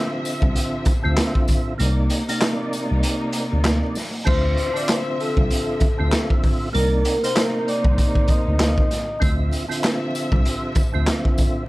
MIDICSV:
0, 0, Header, 1, 6, 480
1, 0, Start_track
1, 0, Tempo, 618557
1, 1391, Time_signature, 4, 2, 24, 8
1, 9070, End_track
2, 0, Start_track
2, 0, Title_t, "Vibraphone"
2, 0, Program_c, 0, 11
2, 3308, Note_on_c, 0, 72, 101
2, 3314, Note_on_c, 0, 84, 76
2, 3664, Note_off_c, 0, 72, 0
2, 3667, Note_off_c, 0, 84, 0
2, 3689, Note_on_c, 0, 74, 77
2, 3695, Note_on_c, 0, 86, 59
2, 3781, Note_off_c, 0, 74, 0
2, 3785, Note_off_c, 0, 86, 0
2, 3795, Note_on_c, 0, 72, 82
2, 3801, Note_on_c, 0, 84, 58
2, 4009, Note_off_c, 0, 72, 0
2, 4012, Note_off_c, 0, 84, 0
2, 4038, Note_on_c, 0, 69, 71
2, 4044, Note_on_c, 0, 81, 50
2, 4860, Note_off_c, 0, 69, 0
2, 4864, Note_off_c, 0, 81, 0
2, 5231, Note_on_c, 0, 70, 102
2, 5239, Note_on_c, 0, 82, 73
2, 5586, Note_off_c, 0, 70, 0
2, 5590, Note_off_c, 0, 82, 0
2, 5609, Note_on_c, 0, 72, 80
2, 5615, Note_on_c, 0, 84, 60
2, 5701, Note_off_c, 0, 72, 0
2, 5705, Note_off_c, 0, 84, 0
2, 5709, Note_on_c, 0, 70, 88
2, 5716, Note_on_c, 0, 82, 72
2, 5926, Note_off_c, 0, 70, 0
2, 5930, Note_off_c, 0, 82, 0
2, 5956, Note_on_c, 0, 74, 90
2, 5962, Note_on_c, 0, 86, 57
2, 6405, Note_off_c, 0, 74, 0
2, 6408, Note_off_c, 0, 86, 0
2, 6431, Note_on_c, 0, 75, 86
2, 6438, Note_on_c, 0, 87, 66
2, 7120, Note_off_c, 0, 75, 0
2, 7124, Note_off_c, 0, 87, 0
2, 9070, End_track
3, 0, Start_track
3, 0, Title_t, "Tonewheel organ"
3, 0, Program_c, 1, 16
3, 0, Note_on_c, 1, 50, 103
3, 0, Note_on_c, 1, 60, 90
3, 0, Note_on_c, 1, 65, 95
3, 0, Note_on_c, 1, 76, 110
3, 713, Note_off_c, 1, 50, 0
3, 716, Note_off_c, 1, 60, 0
3, 719, Note_off_c, 1, 65, 0
3, 722, Note_off_c, 1, 76, 0
3, 798, Note_on_c, 1, 50, 93
3, 804, Note_on_c, 1, 60, 91
3, 810, Note_on_c, 1, 65, 95
3, 817, Note_on_c, 1, 76, 104
3, 1345, Note_off_c, 1, 50, 0
3, 1348, Note_off_c, 1, 60, 0
3, 1351, Note_off_c, 1, 65, 0
3, 1354, Note_off_c, 1, 76, 0
3, 1376, Note_on_c, 1, 48, 99
3, 1382, Note_on_c, 1, 58, 81
3, 1389, Note_on_c, 1, 63, 85
3, 1395, Note_on_c, 1, 74, 109
3, 1728, Note_off_c, 1, 48, 0
3, 1731, Note_off_c, 1, 58, 0
3, 1734, Note_off_c, 1, 63, 0
3, 1737, Note_off_c, 1, 74, 0
3, 1768, Note_on_c, 1, 48, 97
3, 1774, Note_on_c, 1, 58, 87
3, 1781, Note_on_c, 1, 63, 97
3, 1787, Note_on_c, 1, 74, 95
3, 3077, Note_off_c, 1, 48, 0
3, 3080, Note_off_c, 1, 58, 0
3, 3083, Note_off_c, 1, 63, 0
3, 3086, Note_off_c, 1, 74, 0
3, 3294, Note_on_c, 1, 50, 93
3, 3300, Note_on_c, 1, 60, 84
3, 3307, Note_on_c, 1, 65, 95
3, 3312, Note_on_c, 1, 76, 106
3, 3647, Note_off_c, 1, 50, 0
3, 3650, Note_off_c, 1, 60, 0
3, 3653, Note_off_c, 1, 65, 0
3, 3656, Note_off_c, 1, 76, 0
3, 3674, Note_on_c, 1, 50, 101
3, 3680, Note_on_c, 1, 60, 96
3, 3686, Note_on_c, 1, 65, 95
3, 3692, Note_on_c, 1, 76, 106
3, 4553, Note_off_c, 1, 50, 0
3, 4556, Note_off_c, 1, 60, 0
3, 4560, Note_off_c, 1, 65, 0
3, 4563, Note_off_c, 1, 76, 0
3, 4639, Note_on_c, 1, 50, 89
3, 4645, Note_on_c, 1, 60, 94
3, 4652, Note_on_c, 1, 65, 93
3, 4658, Note_on_c, 1, 76, 106
3, 5186, Note_off_c, 1, 50, 0
3, 5188, Note_off_c, 1, 60, 0
3, 5192, Note_off_c, 1, 65, 0
3, 5195, Note_off_c, 1, 76, 0
3, 5218, Note_on_c, 1, 48, 96
3, 5224, Note_on_c, 1, 58, 83
3, 5230, Note_on_c, 1, 63, 82
3, 5237, Note_on_c, 1, 74, 104
3, 5569, Note_off_c, 1, 48, 0
3, 5572, Note_off_c, 1, 58, 0
3, 5575, Note_off_c, 1, 63, 0
3, 5578, Note_off_c, 1, 74, 0
3, 5608, Note_on_c, 1, 48, 94
3, 5615, Note_on_c, 1, 58, 91
3, 5621, Note_on_c, 1, 63, 92
3, 5627, Note_on_c, 1, 72, 96
3, 6917, Note_off_c, 1, 48, 0
3, 6920, Note_off_c, 1, 58, 0
3, 6923, Note_off_c, 1, 63, 0
3, 6926, Note_off_c, 1, 72, 0
3, 7134, Note_on_c, 1, 50, 91
3, 7140, Note_on_c, 1, 60, 84
3, 7147, Note_on_c, 1, 65, 94
3, 7153, Note_on_c, 1, 76, 103
3, 7487, Note_off_c, 1, 50, 0
3, 7490, Note_off_c, 1, 60, 0
3, 7493, Note_off_c, 1, 65, 0
3, 7496, Note_off_c, 1, 76, 0
3, 7515, Note_on_c, 1, 50, 101
3, 7521, Note_on_c, 1, 60, 90
3, 7528, Note_on_c, 1, 65, 94
3, 7534, Note_on_c, 1, 76, 111
3, 8394, Note_off_c, 1, 50, 0
3, 8397, Note_off_c, 1, 60, 0
3, 8400, Note_off_c, 1, 65, 0
3, 8404, Note_off_c, 1, 76, 0
3, 8480, Note_on_c, 1, 50, 94
3, 8487, Note_on_c, 1, 60, 98
3, 8492, Note_on_c, 1, 65, 99
3, 8499, Note_on_c, 1, 76, 103
3, 9026, Note_off_c, 1, 50, 0
3, 9029, Note_off_c, 1, 60, 0
3, 9032, Note_off_c, 1, 65, 0
3, 9035, Note_off_c, 1, 76, 0
3, 9070, End_track
4, 0, Start_track
4, 0, Title_t, "String section"
4, 0, Program_c, 2, 48
4, 0, Note_on_c, 2, 48, 79
4, 0, Note_on_c, 2, 53, 74
4, 0, Note_on_c, 2, 76, 90
4, 1374, Note_off_c, 2, 53, 0
4, 1374, Note_off_c, 2, 76, 0
4, 1375, Note_off_c, 2, 48, 0
4, 1387, Note_on_c, 2, 48, 82
4, 1388, Note_on_c, 2, 58, 80
4, 1388, Note_on_c, 2, 63, 86
4, 3290, Note_off_c, 2, 48, 0
4, 3290, Note_off_c, 2, 58, 0
4, 3290, Note_off_c, 2, 63, 0
4, 3316, Note_on_c, 2, 53, 80
4, 3316, Note_on_c, 2, 76, 95
4, 3317, Note_on_c, 2, 48, 83
4, 5215, Note_off_c, 2, 48, 0
4, 5215, Note_off_c, 2, 53, 0
4, 5215, Note_off_c, 2, 76, 0
4, 5235, Note_on_c, 2, 48, 89
4, 5236, Note_on_c, 2, 58, 81
4, 5236, Note_on_c, 2, 63, 86
4, 7134, Note_off_c, 2, 48, 0
4, 7134, Note_off_c, 2, 58, 0
4, 7134, Note_off_c, 2, 63, 0
4, 7155, Note_on_c, 2, 53, 74
4, 7156, Note_on_c, 2, 76, 94
4, 7157, Note_on_c, 2, 48, 76
4, 9054, Note_off_c, 2, 53, 0
4, 9054, Note_off_c, 2, 76, 0
4, 9055, Note_off_c, 2, 48, 0
4, 9070, End_track
5, 0, Start_track
5, 0, Title_t, "Tine electric piano"
5, 0, Program_c, 3, 4
5, 329, Note_on_c, 3, 36, 88
5, 420, Note_off_c, 3, 36, 0
5, 814, Note_on_c, 3, 38, 100
5, 903, Note_off_c, 3, 38, 0
5, 1396, Note_on_c, 3, 36, 104
5, 1608, Note_off_c, 3, 36, 0
5, 2254, Note_on_c, 3, 36, 90
5, 2343, Note_off_c, 3, 36, 0
5, 2734, Note_on_c, 3, 38, 97
5, 2946, Note_off_c, 3, 38, 0
5, 3315, Note_on_c, 3, 38, 109
5, 3527, Note_off_c, 3, 38, 0
5, 4170, Note_on_c, 3, 36, 87
5, 4261, Note_off_c, 3, 36, 0
5, 4654, Note_on_c, 3, 38, 98
5, 4743, Note_off_c, 3, 38, 0
5, 5237, Note_on_c, 3, 36, 109
5, 5449, Note_off_c, 3, 36, 0
5, 6090, Note_on_c, 3, 36, 90
5, 6181, Note_off_c, 3, 36, 0
5, 6575, Note_on_c, 3, 38, 96
5, 6786, Note_off_c, 3, 38, 0
5, 7156, Note_on_c, 3, 38, 113
5, 7368, Note_off_c, 3, 38, 0
5, 8010, Note_on_c, 3, 36, 90
5, 8101, Note_off_c, 3, 36, 0
5, 8494, Note_on_c, 3, 38, 100
5, 8583, Note_off_c, 3, 38, 0
5, 9070, End_track
6, 0, Start_track
6, 0, Title_t, "Drums"
6, 195, Note_on_c, 9, 54, 80
6, 198, Note_on_c, 9, 42, 70
6, 272, Note_off_c, 9, 54, 0
6, 275, Note_off_c, 9, 42, 0
6, 326, Note_on_c, 9, 36, 96
6, 403, Note_off_c, 9, 36, 0
6, 431, Note_on_c, 9, 42, 104
6, 509, Note_off_c, 9, 42, 0
6, 660, Note_on_c, 9, 42, 78
6, 667, Note_on_c, 9, 36, 102
6, 667, Note_on_c, 9, 54, 48
6, 738, Note_off_c, 9, 42, 0
6, 744, Note_off_c, 9, 54, 0
6, 745, Note_off_c, 9, 36, 0
6, 909, Note_on_c, 9, 42, 101
6, 910, Note_on_c, 9, 39, 91
6, 913, Note_on_c, 9, 38, 114
6, 987, Note_off_c, 9, 42, 0
6, 988, Note_off_c, 9, 39, 0
6, 990, Note_off_c, 9, 38, 0
6, 1049, Note_on_c, 9, 36, 94
6, 1127, Note_off_c, 9, 36, 0
6, 1146, Note_on_c, 9, 54, 69
6, 1150, Note_on_c, 9, 42, 87
6, 1154, Note_on_c, 9, 36, 95
6, 1224, Note_off_c, 9, 54, 0
6, 1228, Note_off_c, 9, 42, 0
6, 1232, Note_off_c, 9, 36, 0
6, 1392, Note_on_c, 9, 42, 90
6, 1470, Note_off_c, 9, 42, 0
6, 1626, Note_on_c, 9, 42, 70
6, 1633, Note_on_c, 9, 54, 56
6, 1704, Note_off_c, 9, 42, 0
6, 1711, Note_off_c, 9, 54, 0
6, 1773, Note_on_c, 9, 42, 62
6, 1851, Note_off_c, 9, 42, 0
6, 1870, Note_on_c, 9, 42, 103
6, 1873, Note_on_c, 9, 39, 90
6, 1875, Note_on_c, 9, 38, 111
6, 1948, Note_off_c, 9, 42, 0
6, 1950, Note_off_c, 9, 39, 0
6, 1953, Note_off_c, 9, 38, 0
6, 2117, Note_on_c, 9, 42, 72
6, 2118, Note_on_c, 9, 54, 81
6, 2194, Note_off_c, 9, 42, 0
6, 2195, Note_off_c, 9, 54, 0
6, 2351, Note_on_c, 9, 42, 105
6, 2428, Note_off_c, 9, 42, 0
6, 2580, Note_on_c, 9, 42, 76
6, 2587, Note_on_c, 9, 54, 47
6, 2658, Note_off_c, 9, 42, 0
6, 2665, Note_off_c, 9, 54, 0
6, 2829, Note_on_c, 9, 42, 98
6, 2830, Note_on_c, 9, 39, 91
6, 2833, Note_on_c, 9, 38, 117
6, 2907, Note_off_c, 9, 42, 0
6, 2908, Note_off_c, 9, 39, 0
6, 2911, Note_off_c, 9, 38, 0
6, 3068, Note_on_c, 9, 54, 68
6, 3072, Note_on_c, 9, 46, 65
6, 3080, Note_on_c, 9, 38, 39
6, 3145, Note_off_c, 9, 54, 0
6, 3149, Note_off_c, 9, 46, 0
6, 3157, Note_off_c, 9, 38, 0
6, 3311, Note_on_c, 9, 49, 100
6, 3312, Note_on_c, 9, 36, 119
6, 3389, Note_off_c, 9, 49, 0
6, 3390, Note_off_c, 9, 36, 0
6, 3549, Note_on_c, 9, 42, 71
6, 3626, Note_off_c, 9, 42, 0
6, 3695, Note_on_c, 9, 42, 62
6, 3772, Note_off_c, 9, 42, 0
6, 3791, Note_on_c, 9, 42, 106
6, 3794, Note_on_c, 9, 39, 90
6, 3796, Note_on_c, 9, 38, 113
6, 3869, Note_off_c, 9, 42, 0
6, 3871, Note_off_c, 9, 39, 0
6, 3874, Note_off_c, 9, 38, 0
6, 4038, Note_on_c, 9, 42, 70
6, 4116, Note_off_c, 9, 42, 0
6, 4167, Note_on_c, 9, 36, 93
6, 4244, Note_off_c, 9, 36, 0
6, 4272, Note_on_c, 9, 42, 105
6, 4349, Note_off_c, 9, 42, 0
6, 4501, Note_on_c, 9, 42, 78
6, 4508, Note_on_c, 9, 36, 108
6, 4579, Note_off_c, 9, 42, 0
6, 4586, Note_off_c, 9, 36, 0
6, 4750, Note_on_c, 9, 42, 102
6, 4751, Note_on_c, 9, 39, 89
6, 4754, Note_on_c, 9, 38, 111
6, 4828, Note_off_c, 9, 42, 0
6, 4829, Note_off_c, 9, 39, 0
6, 4831, Note_off_c, 9, 38, 0
6, 4891, Note_on_c, 9, 36, 93
6, 4968, Note_off_c, 9, 36, 0
6, 4992, Note_on_c, 9, 46, 62
6, 4995, Note_on_c, 9, 36, 99
6, 5070, Note_off_c, 9, 46, 0
6, 5073, Note_off_c, 9, 36, 0
6, 5234, Note_on_c, 9, 42, 87
6, 5312, Note_off_c, 9, 42, 0
6, 5469, Note_on_c, 9, 42, 70
6, 5547, Note_off_c, 9, 42, 0
6, 5616, Note_on_c, 9, 42, 61
6, 5693, Note_off_c, 9, 42, 0
6, 5712, Note_on_c, 9, 42, 108
6, 5714, Note_on_c, 9, 39, 89
6, 5717, Note_on_c, 9, 38, 116
6, 5790, Note_off_c, 9, 42, 0
6, 5792, Note_off_c, 9, 39, 0
6, 5795, Note_off_c, 9, 38, 0
6, 5959, Note_on_c, 9, 42, 74
6, 6037, Note_off_c, 9, 42, 0
6, 6087, Note_on_c, 9, 36, 95
6, 6165, Note_off_c, 9, 36, 0
6, 6192, Note_on_c, 9, 42, 104
6, 6193, Note_on_c, 9, 36, 94
6, 6270, Note_off_c, 9, 42, 0
6, 6271, Note_off_c, 9, 36, 0
6, 6327, Note_on_c, 9, 36, 94
6, 6405, Note_off_c, 9, 36, 0
6, 6422, Note_on_c, 9, 42, 79
6, 6429, Note_on_c, 9, 36, 108
6, 6500, Note_off_c, 9, 42, 0
6, 6506, Note_off_c, 9, 36, 0
6, 6672, Note_on_c, 9, 39, 92
6, 6672, Note_on_c, 9, 42, 101
6, 6675, Note_on_c, 9, 38, 113
6, 6749, Note_off_c, 9, 42, 0
6, 6750, Note_off_c, 9, 39, 0
6, 6753, Note_off_c, 9, 38, 0
6, 6811, Note_on_c, 9, 36, 95
6, 6889, Note_off_c, 9, 36, 0
6, 6913, Note_on_c, 9, 42, 93
6, 6921, Note_on_c, 9, 38, 40
6, 6991, Note_off_c, 9, 42, 0
6, 6999, Note_off_c, 9, 38, 0
6, 7153, Note_on_c, 9, 36, 123
6, 7155, Note_on_c, 9, 42, 87
6, 7231, Note_off_c, 9, 36, 0
6, 7233, Note_off_c, 9, 42, 0
6, 7390, Note_on_c, 9, 42, 74
6, 7394, Note_on_c, 9, 54, 54
6, 7468, Note_off_c, 9, 42, 0
6, 7471, Note_off_c, 9, 54, 0
6, 7537, Note_on_c, 9, 42, 61
6, 7614, Note_off_c, 9, 42, 0
6, 7633, Note_on_c, 9, 42, 105
6, 7636, Note_on_c, 9, 39, 90
6, 7638, Note_on_c, 9, 38, 108
6, 7711, Note_off_c, 9, 42, 0
6, 7713, Note_off_c, 9, 39, 0
6, 7716, Note_off_c, 9, 38, 0
6, 7876, Note_on_c, 9, 54, 79
6, 7879, Note_on_c, 9, 42, 73
6, 7954, Note_off_c, 9, 54, 0
6, 7957, Note_off_c, 9, 42, 0
6, 8007, Note_on_c, 9, 36, 101
6, 8085, Note_off_c, 9, 36, 0
6, 8113, Note_on_c, 9, 42, 105
6, 8190, Note_off_c, 9, 42, 0
6, 8343, Note_on_c, 9, 42, 79
6, 8348, Note_on_c, 9, 54, 47
6, 8349, Note_on_c, 9, 36, 108
6, 8420, Note_off_c, 9, 42, 0
6, 8426, Note_off_c, 9, 36, 0
6, 8426, Note_off_c, 9, 54, 0
6, 8591, Note_on_c, 9, 42, 102
6, 8592, Note_on_c, 9, 39, 93
6, 8594, Note_on_c, 9, 38, 120
6, 8668, Note_off_c, 9, 42, 0
6, 8669, Note_off_c, 9, 39, 0
6, 8672, Note_off_c, 9, 38, 0
6, 8731, Note_on_c, 9, 36, 97
6, 8808, Note_off_c, 9, 36, 0
6, 8828, Note_on_c, 9, 54, 69
6, 8833, Note_on_c, 9, 42, 88
6, 8835, Note_on_c, 9, 36, 100
6, 8906, Note_off_c, 9, 54, 0
6, 8910, Note_off_c, 9, 42, 0
6, 8913, Note_off_c, 9, 36, 0
6, 9070, End_track
0, 0, End_of_file